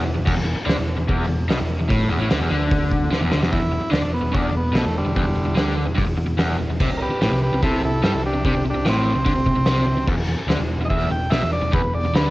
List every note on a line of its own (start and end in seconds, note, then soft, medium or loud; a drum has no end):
0.06 0.16 E1 medium
0.06 0.13 E2 medium
0.15 0.24 E2 medium
0.19 0.27 E1 medium
0.25 0.36 E1 loud
0.25 0.35 E2 loud
0.25 kick loud
0.25 crash loud
0.37 0.47 E1 medium
0.37 0.43 E2 medium
0.44 0.56 E1 medium
0.44 0.55 E2 medium
0.56 muted overdriven electric guitar stroke medium
0.56 muted picked electric bass stroke soft
0.66 0.76 D2 loud
0.66 0.76 D3 loud
0.66 snare loud
0.66 open hi-hat medium
0.77 0.96 E1 medium
0.77 0.93 E2 medium
0.97 1.07 E1 medium
0.97 1.06 E2 medium
1.07 1.27 E1 loud
1.07 1.26 E2 loud
1.07 kick loud
1.07 open hi-hat medium
1.28 1.47 E1 medium
1.28 1.44 E2 medium
1.49 1.58 B1 loud
1.49 1.58 B2 loud
1.49 snare loud
1.49 open hi-hat medium
1.59 1.78 E1 medium
1.59 1.75 E2 medium
1.80 1.89 E1 medium
1.80 1.90 E2 medium
1.89 2.08 A1 loud
1.89 2.09 A2 loud
1.89 kick loud
1.89 open hi-hat medium
2.08 2.18 E1 medium
2.08 2.19 E2 loud
2.18 2.28 A1 medium
2.18 2.29 A2 loud
2.30 2.39 D2 loud
2.30 2.40 D3 loud
2.30 snare loud
2.30 open hi-hat medium
2.40 2.49 E1 loud
2.40 2.49 E2 loud
2.50 3.07 D2 loud
2.50 3.10 D3 loud
2.71 kick loud
2.71 open hi-hat medium
2.92 kick medium
3.10 3.20 D2 loud
3.10 3.21 D3 loud
3.10 snare medium
3.21 3.30 E1 loud
3.21 3.31 E2 loud
3.31 3.41 D2 medium
3.31 3.41 D3 loud
3.31 snare medium
3.41 3.51 E1 loud
3.41 3.51 E2 loud
3.41 snare loud
3.52 3.59 E1 medium
3.52 3.61 E2 loud
3.52 3.91 E4 medium
3.52 kick loud
3.52 open hi-hat medium
3.60 3.71 E1 medium
3.60 3.71 E2 medium
3.71 3.81 E1 medium
3.71 3.80 E2 medium
3.81 muted overdriven electric guitar stroke medium
3.81 muted picked electric bass stroke soft
3.91 4.00 D2 medium
3.91 4.02 D3 loud
3.91 4.12 D4 medium
3.91 snare loud
3.91 open hi-hat medium
4.01 4.21 E1 medium
4.01 4.19 E2 medium
4.14 4.33 B3 medium
4.22 4.32 E1 medium
4.22 4.31 E2 medium
4.32 4.52 E1 loud
4.32 4.51 E2 loud
4.32 4.35 C#4 medium
4.32 kick loud
4.32 open hi-hat medium
4.37 4.55 D4 medium
4.52 4.72 E1 medium
4.52 4.70 E2 medium
4.57 4.75 B3 medium
4.73 4.83 B1 loud
4.73 4.83 B2 loud
4.73 snare loud
4.73 open hi-hat medium
4.78 4.96 A3 medium
4.83 5.03 E1 medium
4.83 5.01 E2 medium
4.97 5.74 D3 medium
4.97 5.76 G3 medium
5.05 5.14 E1 medium
5.05 5.15 E2 medium
5.16 5.23 E1 loud
5.16 5.25 E2 loud
5.16 kick loud
5.16 open hi-hat medium
5.24 5.33 E1 medium
5.24 5.35 E2 medium
5.34 5.43 E1 medium
5.34 5.45 E2 medium
5.43 5.54 E1 medium
5.43 5.56 E2 medium
5.55 5.84 D2 medium
5.55 5.86 D3 loud
5.55 snare loud
5.55 open hi-hat medium
5.86 5.96 E1 medium
5.86 5.95 E2 medium
5.95 6.04 G1 loud
5.95 6.06 G2 loud
5.95 kick loud
5.95 open hi-hat medium
6.04 6.15 E1 medium
6.04 6.16 E2 medium
6.15 6.26 E1 medium
6.15 6.25 E2 medium
6.26 6.36 E1 medium
6.26 6.36 E2 medium
6.37 6.57 E1 loud
6.37 6.57 E2 loud
6.37 snare loud
6.37 open hi-hat medium
6.58 6.68 E1 medium
6.58 6.69 E2 medium
6.68 6.78 E1 medium
6.68 6.80 E2 medium
6.80 6.89 C2 loud
6.80 6.90 C3 loud
6.80 kick loud
6.80 crash loud
6.90 6.99 C2 medium
6.90 7.01 C3 medium
6.97 7.10 C2 medium
6.97 7.00 A#4 medium
7.02 7.10 C3 medium
7.02 7.20 G4 medium
7.02 7.21 B4 medium
7.11 muted picked electric bass stroke soft
7.11 muted overdriven electric guitar stroke medium
7.21 7.30 A1 loud
7.21 7.31 A2 loud
7.21 7.40 G4 medium
7.21 7.41 B4 medium
7.21 snare loud
7.21 open hi-hat medium
7.31 7.50 C2 medium
7.31 7.49 C3 medium
7.43 7.61 G4 medium
7.43 7.62 B4 medium
7.53 7.61 C2 medium
7.53 7.62 C3 medium
7.63 7.81 C2 loud
7.63 7.82 C3 loud
7.63 7.82 E4 medium
7.63 7.83 A4 medium
7.63 kick loud
7.63 open hi-hat medium
7.84 8.02 C2 medium
7.84 7.99 C3 medium
7.84 8.02 E4 medium
7.84 8.03 A4 medium
8.03 8.13 G2 loud
8.03 8.12 G3 loud
8.03 8.22 E4 medium
8.03 8.23 A4 medium
8.03 snare loud
8.03 open hi-hat medium
8.13 8.32 C2 medium
8.13 8.29 C3 medium
8.26 8.44 D4 medium
8.26 8.44 G4 medium
8.33 8.43 C2 medium
8.33 8.44 C3 medium
8.44 8.54 C2 loud
8.44 8.54 C3 loud
8.44 8.64 D4 medium
8.44 8.65 G4 medium
8.44 kick loud
8.44 open hi-hat medium
8.56 8.64 C2 medium
8.56 8.64 C3 medium
8.65 8.74 C2 medium
8.65 8.73 C3 medium
8.70 8.86 D4 medium
8.70 8.87 G4 medium
8.74 8.84 C2 medium
8.74 8.85 C3 medium
8.85 9.14 A1 medium
8.85 9.15 A2 loud
8.85 10.07 C4 loud
8.85 snare loud
8.85 open hi-hat medium
9.16 9.25 C2 medium
9.16 9.25 C3 medium
9.25 9.36 D2 medium
9.25 9.35 D3 loud
9.25 kick loud
9.25 open hi-hat medium
9.36 9.46 C2 medium
9.36 9.45 C3 medium
9.46 9.54 C2 medium
9.46 9.55 C3 medium
9.46 kick medium
9.55 9.65 C2 medium
9.55 9.66 C3 medium
9.65 9.85 C2 loud
9.65 9.86 C3 loud
9.65 snare loud
9.65 open hi-hat medium
9.85 9.95 C2 medium
9.85 9.96 C3 medium
9.96 10.06 C2 medium
9.96 10.08 C3 medium
10.07 10.15 E1 loud
10.07 10.17 E2 loud
10.07 kick loud
10.07 crash loud
10.15 10.25 E1 medium
10.15 10.27 E2 medium
10.26 10.36 E1 medium
10.26 10.38 E2 medium
10.37 muted picked electric bass stroke soft
10.37 muted overdriven electric guitar stroke medium
10.47 10.57 D2 medium
10.47 10.59 D3 loud
10.47 snare loud
10.47 open hi-hat medium
10.57 10.78 E1 medium
10.57 10.76 E2 medium
10.78 10.89 E1 medium
10.78 10.89 E2 medium
10.85 10.88 D#5 medium
10.89 11.09 E1 loud
10.89 11.09 E2 loud
10.89 11.10 E5 loud
10.89 kick loud
10.89 open hi-hat medium
11.10 11.30 E1 medium
11.10 11.27 E2 medium
11.10 11.31 G5 medium
11.30 11.41 B1 loud
11.30 11.41 B2 loud
11.30 11.51 E5 loud
11.30 snare loud
11.30 open hi-hat medium
11.42 11.61 E1 medium
11.42 11.59 E2 medium
11.53 11.73 D5 loud
11.62 11.72 E1 medium
11.62 11.70 E2 medium
11.72 11.82 E1 loud
11.72 11.82 E2 loud
11.72 11.94 B4 medium
11.72 kick loud
11.72 open hi-hat medium
11.83 11.93 E1 medium
11.83 11.93 E2 medium
11.94 12.03 E1 medium
11.94 12.04 E2 medium
11.94 12.14 D5 medium
12.03 12.13 E1 medium
12.03 12.15 E2 medium
12.13 12.30 D2 loud
12.13 12.30 D3 loud
12.13 12.30 B4 loud
12.13 snare loud
12.13 open hi-hat medium